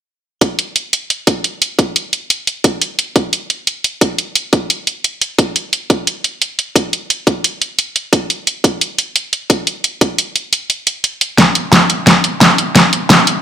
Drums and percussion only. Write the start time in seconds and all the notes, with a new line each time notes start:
0.41 kick, closed hi-hat
0.59 closed hi-hat
0.76 closed hi-hat
0.93 closed hi-hat
1.10 closed hi-hat
1.27 kick, closed hi-hat
1.44 closed hi-hat
1.62 closed hi-hat
1.79 kick, closed hi-hat
1.96 closed hi-hat
2.13 closed hi-hat
2.30 closed hi-hat
2.47 closed hi-hat
2.64 kick, closed hi-hat
2.82 closed hi-hat
2.99 closed hi-hat
3.16 kick, closed hi-hat
3.33 closed hi-hat
3.50 closed hi-hat
3.67 closed hi-hat
3.84 closed hi-hat
4.01 kick, closed hi-hat
4.18 closed hi-hat
4.35 closed hi-hat
4.53 kick, closed hi-hat
4.70 closed hi-hat
4.87 closed hi-hat
5.04 closed hi-hat
5.21 closed hi-hat
5.39 kick, closed hi-hat
5.56 closed hi-hat
5.73 closed hi-hat
5.90 kick, closed hi-hat
6.07 closed hi-hat
6.24 closed hi-hat
6.42 closed hi-hat
6.59 closed hi-hat
6.76 kick, closed hi-hat
6.93 closed hi-hat
7.10 closed hi-hat
7.27 kick, closed hi-hat
7.44 closed hi-hat
7.62 closed hi-hat
7.79 closed hi-hat
7.96 closed hi-hat
8.13 kick, closed hi-hat
8.30 closed hi-hat
8.47 closed hi-hat
8.64 kick, closed hi-hat
8.81 closed hi-hat
8.98 closed hi-hat
9.16 closed hi-hat
9.33 closed hi-hat
9.50 kick, closed hi-hat
9.67 closed hi-hat
9.84 closed hi-hat
10.01 kick, closed hi-hat
10.18 closed hi-hat
10.36 closed hi-hat
10.53 closed hi-hat
10.70 closed hi-hat
10.87 closed hi-hat
11.04 closed hi-hat
11.21 closed hi-hat
11.38 kick, snare, closed hi-hat
11.55 closed hi-hat
11.72 kick, snare, closed hi-hat
11.90 closed hi-hat
12.07 kick, snare, closed hi-hat
12.24 closed hi-hat
12.41 kick, snare, closed hi-hat
12.58 closed hi-hat
12.75 kick, snare, closed hi-hat
12.93 closed hi-hat
13.10 kick, snare, closed hi-hat
13.27 closed hi-hat